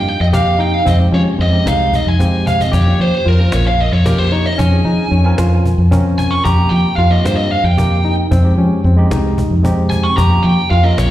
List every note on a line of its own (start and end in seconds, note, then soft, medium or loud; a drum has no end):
0.00 0.16 G2 medium
0.00 0.10 G4 medium
0.07 0.21 G5 medium
0.07 cajon slap soft
0.20 0.80 F2 medium
0.20 0.26 D#5 medium
0.32 0.76 A#3 medium
0.32 0.77 C4 medium
0.32 0.77 D#4 medium
0.32 0.55 G4 medium
0.32 0.77 G4 medium
0.32 0.60 F5 medium
0.32 cajon bass loud
0.59 0.81 D#4 medium
0.59 0.74 G5 medium
0.59 cajon slap soft
0.74 0.87 F5 medium
0.85 1.11 F2 medium
0.85 1.07 C4 medium
0.85 0.95 D#5 medium
0.85 cajon bass loud
0.99 1.34 G#3 medium
0.99 1.34 C4 medium
0.99 1.35 D#4 medium
0.99 1.35 G4 medium
1.12 1.25 F3 medium
1.12 1.34 C#4 medium
1.12 1.21 C#5 medium
1.39 1.63 F2 medium
1.39 1.61 C4 medium
1.39 1.68 D#5 medium
1.39 cajon slap soft
1.51 1.96 G#3 medium
1.51 1.96 C4 medium
1.51 1.96 D#4 medium
1.51 1.97 G4 medium
1.66 2.02 C2 medium
1.66 2.09 D#4 medium
1.66 1.94 F5 medium
1.66 cajon slap loud
1.93 2.08 D#5 medium
1.93 cajon bass medium
2.06 2.66 F2 medium
2.06 2.47 G#5 medium
2.18 2.63 G#3 medium
2.18 2.62 C4 medium
2.18 2.63 C4 medium
2.18 2.63 D#4 medium
2.18 2.64 G4 medium
2.18 cajon bass medium
2.18 cajon slap medium
2.47 2.60 F5 medium
2.47 cajon bass medium
2.61 2.74 D#5 medium
2.61 cajon bass medium
2.72 2.97 F2 loud
2.72 3.15 G4 medium
2.72 3.01 C#5 medium
2.72 cajon bass loud
2.86 3.21 A#3 medium
2.86 3.21 C#4 medium
2.86 3.21 F4 medium
2.86 3.22 G4 medium
2.99 3.11 F3 medium
2.99 3.28 C5 medium
2.99 cajon slap soft
3.26 3.50 F2 medium
3.26 3.68 F4 medium
3.26 3.52 A#4 medium
3.26 cajon slap soft
3.39 3.82 A#3 medium
3.39 3.83 C#4 medium
3.39 3.83 F4 medium
3.39 3.83 A#4 medium
3.52 3.89 A#1 medium
3.52 3.67 C#5 medium
3.52 cajon slap loud
3.67 3.80 F5 medium
3.80 3.93 D#5 medium
3.80 cajon slap soft
3.92 4.52 F2 medium
3.92 4.05 C#5 medium
4.05 4.49 A#3 medium
4.05 4.49 C#4 medium
4.05 4.49 F4 medium
4.05 4.27 G4 medium
4.05 4.50 G4 medium
4.05 4.18 A#4 medium
4.05 cajon bass loud
4.05 cajon slap soft
4.18 4.32 C5 medium
4.32 4.53 D#4 medium
4.32 4.46 C#5 medium
4.32 cajon slap soft
4.46 4.59 D#5 medium
4.58 4.83 F2 loud
4.58 4.80 C#4 medium
4.58 5.88 G#5 medium
4.58 cajon bass loud
4.71 5.06 C4 medium
4.71 5.07 C#4 medium
4.71 5.07 F4 medium
4.71 5.07 G#4 medium
4.85 4.97 F3 medium
4.85 5.06 D#4 medium
4.85 cajon slap soft
5.11 5.36 F2 loud
5.11 5.33 C#4 medium
5.11 cajon slap soft
5.24 5.68 C4 medium
5.24 5.69 C#4 medium
5.24 5.69 F4 medium
5.24 5.69 A#4 loud
5.38 5.74 F2 medium
5.38 5.81 F4 medium
5.38 cajon slap loud
5.65 cajon bass medium
5.65 cajon slap soft
5.78 6.38 F2 medium
5.91 6.35 C4 medium
5.91 6.35 C#4 medium
5.91 6.34 C#4 medium
5.91 6.35 F4 medium
5.91 6.36 A#4 medium
5.91 cajon bass loud
5.91 cajon slap soft
6.18 6.32 G#5 medium
6.18 cajon bass medium
6.18 cajon slap soft
6.31 6.44 C#6 loud
6.44 6.69 F2 loud
6.44 6.87 G4 medium
6.44 6.72 A#5 medium
6.44 cajon bass loud
6.57 6.92 A#3 medium
6.57 6.93 C4 medium
6.57 6.93 D#4 medium
6.57 6.93 G4 medium
6.70 6.83 F3 medium
6.70 6.96 G5 loud
6.70 cajon slap soft
6.96 7.22 F2 loud
6.96 7.41 F4 medium
6.96 7.11 F5 medium
6.96 cajon slap soft
7.10 7.54 A#3 medium
7.10 7.55 C4 medium
7.10 7.55 D#4 medium
7.10 7.55 G4 medium
7.10 7.25 D#5 medium
7.24 7.60 G2 medium
7.24 7.36 C5 medium
7.24 cajon slap loud
7.36 7.50 D#5 medium
7.51 7.65 F5 medium
7.51 cajon slap soft
7.64 8.24 F2 medium
7.64 8.14 G5 medium
7.77 8.21 A#3 medium
7.77 8.21 C4 medium
7.77 8.22 D#4 medium
7.77 7.99 G4 medium
7.77 8.22 A#4 medium
7.77 cajon bass loud
8.05 8.26 D#4 medium
8.05 cajon slap soft
8.31 8.55 F2 loud
8.31 8.52 C4 medium
8.31 cajon bass loud
8.43 8.79 G#3 medium
8.43 8.79 C4 medium
8.43 8.79 D#4 medium
8.43 8.79 G4 medium
8.58 8.70 F3 medium
8.58 8.79 C#4 medium
8.58 cajon slap soft
8.84 9.08 F2 loud
8.84 9.06 C4 medium
8.84 cajon slap soft
8.97 9.41 G#3 medium
8.97 9.41 C4 medium
8.97 9.41 D#4 medium
8.97 9.42 G4 medium
9.11 9.47 C2 medium
9.11 9.54 D#4 medium
9.11 cajon slap loud
9.38 cajon bass medium
9.50 10.10 F2 medium
9.63 10.07 G#3 medium
9.63 10.08 C4 medium
9.63 10.07 C4 medium
9.63 10.08 D#4 medium
9.63 10.08 G4 medium
9.63 cajon bass loud
9.90 10.04 G#5 medium
9.90 cajon bass medium
10.03 10.16 C#6 loud
10.17 10.42 F2 medium
10.17 10.60 G4 medium
10.17 10.45 A#5 medium
10.17 cajon bass loud
10.29 10.65 A#3 medium
10.29 10.65 C#4 medium
10.29 10.65 F4 medium
10.29 10.66 G4 medium
10.43 10.56 F3 medium
10.43 10.70 G5 medium
10.43 cajon slap soft
10.70 10.95 F2 loud
10.70 11.11 F4 medium
10.70 10.84 F5 medium
10.70 cajon slap soft
10.83 11.11 A#3 medium
10.83 11.11 C#4 medium
10.83 11.11 F4 medium
10.83 11.11 A#4 medium
10.83 10.98 D#5 medium
10.98 11.11 A#1 medium
10.98 11.10 C#5 medium
10.98 cajon slap loud